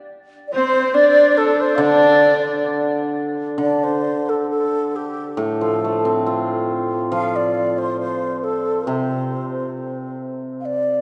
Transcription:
0.47 xiao D5
0.52 horsehead fiddle C4, xiao C5, dizi C5
0.94 horsehead fiddle D4, xiao D5, dizi D5
1.37 xiao A4, dizi A4
1.60 xiao C5, dizi C5
1.75 hammered dulcimer D3, xiao F5
1.80 horsehead fiddle D4, dizi D5, xiao D5
3.58 hammered dulcimer D3, xiao D5
3.83 xiao C5
4.29 xiao A4
4.50 xiao A4
4.96 xiao G4
5.37 hammered dulcimer A2, xiao A4
5.61 hammered dulcimer F3
5.84 hammered dulcimer A3
6.05 hammered dulcimer C4
6.26 hammered dulcimer F4
7.12 hammered dulcimer F3, xiao F5
7.35 xiao D5
7.78 xiao C5
8.00 xiao C5
8.43 xiao A4
8.87 hammered dulcimer C3, xiao C5
10.60 xiao F5
10.66 xiao D5

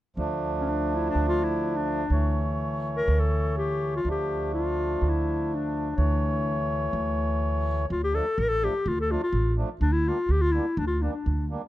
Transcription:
0.16 upright bass D2, accordion F3 A3 D4
0.60 clarinet C#4
0.70 clarinet D4
0.95 clarinet E4
1.09 clarinet D4
1.15 upright bass D2
1.28 clarinet F4
1.43 clarinet E4
1.77 clarinet D4
2.10 upright bass D2, accordion E3 A3 C#5
2.97 clarinet A#4
3.08 upright bass D2
3.20 clarinet A4
3.57 clarinet G4
3.96 clarinet F4
4.05 upright bass D2, accordion F3 A3 D4
4.10 clarinet G4
4.54 clarinet F4
5.01 upright bass D2
5.09 clarinet E4
5.55 clarinet D4
5.96 upright bass D2, accordion E3 A3 C#5
6.93 upright bass D2
7.90 upright bass D2, clarinet F4
8.04 clarinet G4
8.13 accordion F3 A3 D4, clarinet A4
8.38 upright bass A1, clarinet A#4
8.49 clarinet A4
8.62 accordion F3 A3 D4, clarinet G4
8.86 upright bass D2, clarinet F4
9.01 clarinet A4
9.10 accordion F3 A3 D4, clarinet F4
9.23 clarinet F4
9.33 upright bass A1
9.57 accordion F3 A3 D4
9.81 upright bass D2, clarinet D4
9.92 clarinet E4
10.06 accordion G3 A#3 D4, clarinet F4
10.29 upright bass D2, clarinet G4
10.42 clarinet F4
10.51 accordion G3 A#3 D4, clarinet E4
10.77 upright bass D2, clarinet D4
10.87 clarinet F4
11.02 accordion G3 A#3 D4, clarinet D4
11.13 clarinet D4
11.26 upright bass D2
11.50 accordion G3 A#3 D4

